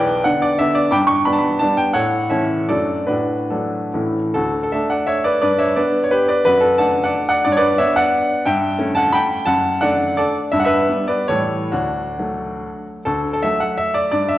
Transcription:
0.00 0.25 B1 medium
0.00 0.23 B4 medium
0.00 0.23 D5 medium
0.00 0.25 G5 loud
0.24 0.57 D3 medium
0.24 0.57 B3 medium
0.24 0.57 D4 medium
0.24 0.42 F#5 loud
0.42 0.60 D5 loud
0.59 0.90 D3 medium
0.59 0.90 B3 medium
0.59 0.90 D4 medium
0.59 0.76 E5 loud
0.75 0.92 D5 loud
0.91 1.26 G2 medium
0.91 1.08 G5 medium
0.91 1.08 B5 medium
0.91 1.09 D6 loud
1.07 1.26 C#6 loud
1.25 1.58 G3 medium
1.25 1.58 B3 medium
1.25 1.58 D4 medium
1.25 1.33 B5 loud
1.33 1.40 A5 medium
1.39 1.61 B5 medium
1.59 1.92 G3 medium
1.59 1.92 B3 medium
1.59 1.92 D4 medium
1.59 1.77 A5 loud
1.77 1.95 G5 loud
1.94 2.29 A2 medium
1.94 2.28 A4 medium
1.94 2.28 C#5 medium
1.94 2.30 F#5 loud
2.30 2.65 E3 soft
2.30 2.65 A3 medium
2.30 2.66 C#4 medium
2.30 2.66 A4 medium
2.30 2.66 C#5 medium
2.30 2.69 E5 medium
2.68 3.08 F#2 medium
2.68 3.05 F#3 soft
2.68 3.05 A3 soft
2.68 3.06 D4 soft
2.68 3.06 F#4 medium
2.68 3.06 A4 medium
2.68 3.09 D5 medium
3.06 3.50 A2 medium
3.06 3.49 D4 medium
3.06 3.49 F#4 medium
3.06 3.51 B4 medium
3.50 3.90 F#3 soft
3.50 3.91 A3 soft
3.50 4.11 D4 soft
3.50 4.11 F#4 soft
3.50 4.15 A4 medium
3.94 4.34 A2 medium
3.94 4.31 E3 soft
3.94 4.31 A3 soft
3.94 4.32 C#4 soft
4.34 4.72 D2 medium
4.34 4.62 F#4 medium
4.34 4.61 A4 medium
4.63 4.71 A4 medium
4.72 5.38 A3 medium
4.72 5.38 D4 medium
4.72 4.90 A4 medium
4.72 4.91 E5 medium
4.90 5.07 D5 medium
4.90 5.08 F#5 medium
5.06 5.24 C#5 medium
5.06 5.24 E5 medium
5.24 5.41 B4 medium
5.24 5.40 D5 loud
5.41 5.77 G2 medium
5.41 5.58 B4 medium
5.41 5.59 D5 medium
5.58 5.76 C#5 medium
5.58 5.77 E5 medium
5.76 6.41 B3 soft
5.76 6.41 D4 soft
5.76 6.02 B4 medium
5.76 6.03 D5 medium
6.03 6.12 C#5 medium
6.11 6.28 G4 medium
6.11 6.28 B4 loud
6.28 6.43 B4 medium
6.28 6.45 D5 medium
6.45 6.78 F#2 medium
6.45 6.61 F#4 medium
6.45 6.62 B4 loud
6.61 6.78 F#4 medium
6.61 6.78 A4 medium
6.78 7.42 A3 medium
6.78 7.42 D4 medium
6.78 7.02 F#5 medium
6.78 7.04 A5 loud
7.03 7.28 D5 medium
7.03 7.27 F#5 medium
7.29 7.43 D5 medium
7.29 7.46 F#5 loud
7.44 7.79 G2 medium
7.44 7.52 D5 loud
7.52 7.59 C#5 medium
7.57 7.78 B4 medium
7.57 7.79 D5 loud
7.78 8.42 B3 medium
7.78 8.42 D4 medium
7.78 7.96 C#5 medium
7.78 7.97 E5 loud
7.96 8.43 D5 medium
7.96 8.46 F#5 loud
8.46 8.79 G2 medium
8.46 8.94 E5 medium
8.46 8.97 G5 loud
8.79 9.42 A3 medium
8.79 9.43 C#4 medium
8.95 9.13 F#5 medium
8.95 9.13 A5 loud
9.13 9.45 G5 medium
9.13 9.46 B5 loud
9.45 9.81 F#2 medium
9.45 9.79 F#5 medium
9.45 9.82 A5 loud
9.81 10.48 A3 medium
9.81 10.48 D4 medium
9.81 10.16 D5 medium
9.81 10.18 F#5 loud
10.17 10.34 A4 medium
10.17 10.35 D5 loud
10.51 10.88 G2 medium
10.51 10.58 E5 loud
10.60 10.66 F#5 medium
10.65 11.06 B4 medium
10.65 11.08 E5 loud
10.89 11.26 G3 medium
10.89 11.26 B3 medium
11.07 11.28 B4 medium
11.07 11.29 D5 medium
11.28 11.72 A2 medium
11.28 11.69 E3 soft
11.28 11.70 G3 medium
11.28 11.70 A3 medium
11.28 11.70 A4 medium
11.28 11.73 C#5 loud
11.72 12.18 D2 medium
11.72 12.82 D4 medium
11.72 12.86 F#4 medium
12.19 13.02 F#3 soft
12.19 13.02 A3 medium
13.05 13.42 D2 medium
13.05 13.32 A4 medium
13.33 13.43 A4 medium
13.43 14.09 F#3 medium
13.43 14.09 A3 medium
13.43 13.61 E5 loud
13.60 13.78 F#5 medium
13.77 13.95 E5 loud
13.94 14.10 D5 loud
14.11 14.38 G2 medium
14.11 14.30 D5 loud
14.29 14.38 E5 loud

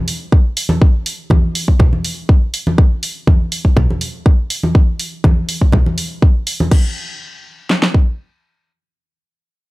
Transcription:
0.08 open hi-hat loud
0.32 kick loud
0.57 open hi-hat loud
0.69 high conga medium
0.82 kick loud
1.06 open hi-hat medium
1.30 kick loud
1.30 high conga medium
1.55 open hi-hat medium
1.68 kick medium
1.80 kick loud
1.80 low conga medium
1.93 high conga medium
2.05 open hi-hat medium
2.29 kick loud
2.54 open hi-hat medium
2.67 high conga medium
2.78 kick loud
3.03 open hi-hat medium
3.27 kick loud
3.27 high conga medium
3.52 open hi-hat medium
3.65 kick medium
3.77 kick loud
3.77 low conga medium
3.90 high conga medium
4.01 open hi-hat medium
4.26 kick loud
4.50 open hi-hat medium
4.63 high conga medium
4.75 kick loud
5.00 open hi-hat medium
5.24 kick loud
5.24 high conga medium
5.49 open hi-hat medium
5.62 kick medium
5.72 kick loud
5.72 low conga medium
5.86 high conga medium
5.98 open hi-hat loud
6.22 kick loud
6.47 open hi-hat medium
6.60 high conga medium
6.71 kick loud
6.71 crash medium
7.70 snare medium
7.83 snare medium
7.94 kick medium

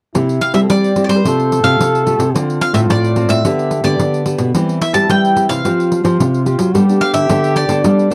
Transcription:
0.15 0.67 C3 medium
0.15 0.38 C3 medium
0.15 0.41 C4 medium
0.15 0.41 E4 medium
0.15 0.65 E4 medium
0.15 0.41 G4 medium
0.15 pandeiro medium
0.29 pandeiro soft
0.41 0.54 F5 loud
0.41 pandeiro medium
0.54 0.67 G3 medium
0.54 0.92 C4 medium
0.54 0.92 E4 medium
0.54 0.92 G4 medium
0.54 0.59 E5 medium
0.54 pandeiro medium
0.63 0.71 A4 medium
0.70 1.05 G3 medium
0.70 1.22 G3 medium
0.70 1.19 G4 loud
0.70 1.02 D5 medium
0.70 pandeiro medium
0.84 pandeiro soft
0.96 1.20 C4 medium
0.96 1.20 E4 medium
0.96 1.20 G4 medium
0.96 pandeiro medium
1.04 1.09 D5 medium
1.09 1.22 G3 medium
1.09 1.67 C5 medium
1.09 pandeiro medium
1.18 1.26 B4 medium
1.25 1.60 C3 medium
1.25 1.77 C3 medium
1.25 1.62 A3 medium
1.25 1.62 F4 medium
1.25 1.62 G4 medium
1.25 2.36 A4 loud
1.25 pandeiro medium
1.40 pandeiro soft
1.52 pandeiro medium
1.63 1.76 C3 medium
1.63 2.02 A3 medium
1.63 2.02 F4 medium
1.63 2.03 G4 medium
1.63 2.03 F5 medium
1.63 pandeiro medium
1.79 2.15 C3 medium
1.79 2.32 C3 medium
1.79 pandeiro medium
1.95 pandeiro soft
2.06 2.23 A3 medium
2.06 2.23 F4 medium
2.06 2.23 G4 medium
2.06 pandeiro medium
2.19 2.31 C3 medium
2.19 pandeiro medium
2.34 2.58 D3 medium
2.34 2.87 D3 medium
2.34 2.72 C4 medium
2.34 3.44 F4 loud
2.34 2.72 F4 medium
2.34 2.72 A4 medium
2.34 pandeiro medium
2.50 pandeiro soft
2.61 2.74 F5 loud
2.61 pandeiro medium
2.73 2.86 A2 medium
2.73 3.12 C4 medium
2.73 3.12 F4 medium
2.73 3.12 A4 medium
2.73 2.80 E5 medium
2.73 pandeiro medium
2.89 3.25 A2 medium
2.89 3.42 A3 medium
2.89 3.29 D5 medium
2.89 pandeiro medium
3.04 pandeiro soft
3.16 3.40 C4 medium
3.16 3.40 F4 medium
3.16 3.40 A4 medium
3.16 pandeiro medium
3.29 3.42 A2 medium
3.29 3.84 E5 loud
3.29 pandeiro medium
3.45 3.80 D3 medium
3.45 3.97 D3 medium
3.45 3.71 B3 medium
3.45 4.24 G4 medium
3.45 3.71 G4 medium
3.45 3.71 A4 medium
3.45 pandeiro medium
3.59 pandeiro soft
3.71 pandeiro soft
3.84 3.97 D3 medium
3.84 4.22 B3 medium
3.84 4.22 G4 medium
3.84 4.22 A4 medium
3.84 4.24 D5 medium
3.84 pandeiro medium
3.99 4.35 D3 loud
3.99 4.52 D3 medium
3.99 pandeiro medium
4.14 pandeiro soft
4.25 4.50 B3 medium
4.25 4.50 G4 medium
4.25 4.50 A4 medium
4.25 pandeiro medium
4.38 4.52 B2 medium
4.38 pandeiro medium
4.54 5.07 E3 medium
4.54 4.78 E3 loud
4.54 4.80 G3 medium
4.54 4.81 C4 medium
4.54 5.66 E4 medium
4.54 4.81 G4 medium
4.54 pandeiro medium
4.69 pandeiro soft
4.81 4.94 E5 loud
4.81 pandeiro medium
4.93 5.31 G3 medium
4.93 5.07 G3 medium
4.93 5.32 C4 medium
4.93 5.32 G4 medium
4.93 5.09 A5 medium
4.93 pandeiro medium
5.09 5.62 E3 medium
5.09 5.45 G3 medium
5.09 5.48 G5 medium
5.09 pandeiro medium
5.25 pandeiro soft
5.35 5.59 G3 medium
5.35 5.60 C4 medium
5.35 5.60 G4 medium
5.35 pandeiro medium
5.49 5.62 C3 medium
5.49 6.42 F5 medium
5.49 pandeiro medium
5.64 6.17 F3 medium
5.64 6.00 F3 medium
5.64 6.01 C4 medium
5.64 6.02 F4 medium
5.64 6.76 F4 medium
5.64 6.02 G4 medium
5.64 pandeiro medium
5.80 pandeiro soft
5.92 pandeiro medium
6.04 6.17 F3 loud
6.04 6.42 C4 medium
6.04 6.42 F4 medium
6.04 6.42 G4 medium
6.04 pandeiro medium
6.19 6.72 C3 medium
6.19 6.55 C3 medium
6.19 pandeiro medium
6.34 pandeiro soft
6.46 6.69 C4 medium
6.46 6.70 F4 medium
6.46 6.70 G4 medium
6.46 pandeiro medium
6.59 6.71 F#3 medium
6.59 pandeiro medium
6.74 7.27 G3 medium
6.74 6.98 G3 medium
6.74 6.84 B3 medium
6.74 6.84 D4 medium
6.74 7.86 G4 loud
6.74 6.84 A4 medium
6.74 pandeiro medium
6.89 7.25 B3 medium
6.89 7.26 D4 medium
6.89 7.26 A4 medium
6.89 pandeiro soft
7.01 7.14 F5 loud
7.01 pandeiro medium
7.14 7.27 D3 medium
7.14 7.53 E5 medium
7.14 pandeiro medium
7.29 7.65 D3 medium
7.29 7.82 D3 medium
7.29 7.66 B3 medium
7.29 7.67 D4 medium
7.29 7.67 A4 medium
7.29 pandeiro medium
7.44 pandeiro soft
7.56 8.14 D5 medium
7.56 pandeiro medium
7.69 7.81 D3 medium
7.69 8.06 B3 medium
7.69 8.07 D4 medium
7.69 8.07 A4 medium
7.69 pandeiro medium
7.84 8.14 G3 medium
7.84 8.08 G3 medium
7.84 8.14 D4 loud
7.84 pandeiro medium
7.99 pandeiro soft
8.10 8.14 F3 medium
8.10 8.14 B3 medium
8.10 8.14 D4 medium

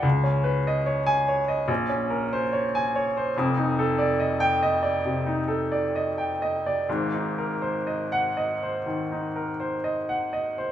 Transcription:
0.03 1.65 C#2 medium
0.23 0.57 C#4 medium
0.44 0.78 B4 medium
0.67 1.00 D#5 medium
0.86 1.20 C#5 medium
1.07 1.40 G#5 medium
1.28 1.61 C#5 medium
1.48 1.69 D#5 medium
1.68 3.29 A#1 medium
1.89 2.23 C#4 medium
2.10 2.43 A#4 medium
2.33 2.65 C5 medium
2.53 2.85 C#5 medium
2.75 3.06 G#5 medium
2.95 3.27 C#5 medium
3.17 3.36 C5 medium
3.37 5.00 F1 medium
3.37 5.01 F2 medium
3.57 3.89 D#4 medium
3.79 4.10 A4 medium
3.98 4.31 D5 medium
4.20 4.52 D#5 medium
4.40 4.73 G5 medium
4.63 4.95 D#5 medium
4.83 5.16 D5 medium
5.05 5.39 C3 medium
5.26 5.62 D#4 soft
5.48 5.84 A4 medium
5.72 6.08 D5 medium
5.96 6.31 D#5 medium
6.18 6.54 G5 medium
6.42 6.79 D#5 medium
6.66 6.89 D5 medium
6.89 8.84 G#1 medium
6.89 8.84 G#2 medium
7.13 7.52 D#4 soft
7.38 7.77 A#4 medium
7.62 8.02 C5 medium
7.87 8.27 D#5 soft
8.12 8.52 F#5 medium
8.37 8.77 D#5 soft
8.63 9.02 C5 soft
8.86 9.25 D#3 soft
9.12 9.50 D#4 soft
9.36 9.74 A#4 soft
9.60 9.98 C5 soft
9.84 10.22 D#5 soft
10.09 10.47 F#5 medium
10.33 10.70 D#5 soft
10.58 10.72 C5 medium

